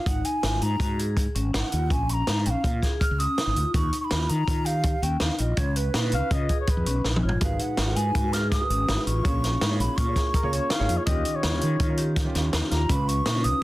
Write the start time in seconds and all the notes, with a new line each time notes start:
0.06 G#1 D#4 F#5, kick, closed hi-hat
0.25 G#5, closed hi-hat
0.43 G#1 F4, snare, closed hi-hat
0.62 G#2 D#4 A#5, closed hi-hat
0.80 G#2 F#4, kick, closed hi-hat
0.99 G#4, closed hi-hat
1.17 kick, closed hi-hat
1.35 G#1 C#4, closed hi-hat
1.53 G#1 D#4 F#5, snare, closed hi-hat
1.72 D#2 F4, closed hi-hat
1.90 A#1 C#4 G#5, kick, closed hi-hat
2.09 C#6, closed hi-hat
2.13 A#5
2.27 G#2 D#4, snare, closed hi-hat
2.45 A#1 C#4 G5, closed hi-hat
2.50 F5
2.64 A#2 F4, kick, closed hi-hat
2.82 G#4, kick, snare, closed hi-hat
3.01 F6, kick, closed hi-hat
3.11 C#2
3.19 C#4 D#6, closed hi-hat
3.38 snare, closed hi-hat
3.47 G#1
3.56 D2 F4, closed hi-hat
3.74 D#2 D#4 C#6, kick, closed hi-hat
3.93 closed hi-hat
4.01 B5 C#6
4.11 D#2 F4, snare, closed hi-hat
4.29 D#3 D#4 A#5, closed hi-hat
4.47 D#3 F4, kick, closed hi-hat
4.65 G4 F5, closed hi-hat
4.83 kick, closed hi-hat
5.02 D#2 C#4 G5, closed hi-hat
5.20 D#2 D#4 F5, snare, closed hi-hat
5.38 A#1 F4 D#5, closed hi-hat
5.57 C#4 C#5, kick, closed hi-hat
5.76 B4, closed hi-hat
5.94 A#2 D#4, snare, closed hi-hat
6.12 C#2 C#4 F5, closed hi-hat
6.31 C#3 F4 D#5, kick, closed hi-hat
6.49 G#4, kick, closed hi-hat
6.61 C#5
6.67 B4, kick, closed hi-hat
6.77 F2
6.86 B1 C#4, closed hi-hat
7.04 A#1 D#4, snare
7.16 mid tom
7.23 G#1 F4 C#5
7.29 floor tom
7.40 G#1 G#3 D#4 F#4 A#4 B4 F5, kick, closed hi-hat
7.59 F#5, closed hi-hat
7.77 G#1 F4, snare, closed hi-hat
7.86 G#3 F#4 A#4 B4
7.96 G#2 D#4 G#5, closed hi-hat
8.15 G#2 F#4, kick, closed hi-hat
8.23 G#3 F#4 A#4 B4
8.33 G#4 F6, snare, closed hi-hat
8.51 D#6, kick, snare, closed hi-hat
8.59 G#3 F#4 A#4 B4
8.70 G#1 C#4, closed hi-hat
8.89 G#1, snare, closed hi-hat
8.95 G#3 F#4 A#4 B4
9.06 A1 F4 C#6, closed hi-hat
9.22 A#1 A#3 C#4 F4 G#4 C#5, kick, closed hi-hat
9.44 snare, closed hi-hat
9.61 G#2 D#4, snare, closed hi-hat
9.69 A#3 F4 G#4 C#5
9.79 A#1 C#4 B5, closed hi-hat
9.96 A#2 F4 C#6, kick, closed hi-hat
10.06 A#3 F4 G#4 C#5
10.16 G#4, kick, snare, closed hi-hat
10.34 A#4, kick, closed hi-hat
10.43 C#2 A#3 F4 G#4 C#5
10.53 C#4 C#5, closed hi-hat
10.70 D#4 F5, snare, closed hi-hat
10.78 G#1 A#3 F4 G#4 C#5
10.89 F2 F4, closed hi-hat
10.97 C#5
11.06 D#2 D#3 C#4 D#4 F4 G4 D#5, kick, closed hi-hat
11.25 closed hi-hat
11.35 C#5
11.43 D#2 F4, snare, closed hi-hat
11.52 D#3 C#4 F4 G4
11.61 D#3 D#4, closed hi-hat
11.80 D#3 F4, kick, closed hi-hat
11.88 D#3 C#4 F4 A#4
11.97 G4, closed hi-hat
12.16 kick, snare, closed hi-hat
12.24 D#3 C#4 F4 G4
12.35 D#2 C#4, snare, closed hi-hat
12.53 D#2 D#4, snare, closed hi-hat
12.61 D#3 C#4 F4 G4
12.71 D#2 F4 A#5, snare, closed hi-hat
12.88 C#2 C#3 C#4 F4 B4 B5, kick, closed hi-hat
13.08 C#6, closed hi-hat
13.26 A#2 D#4, snare, closed hi-hat
13.34 C#3 C#4 F4 B4
13.44 C#2 C#4 D#6, closed hi-hat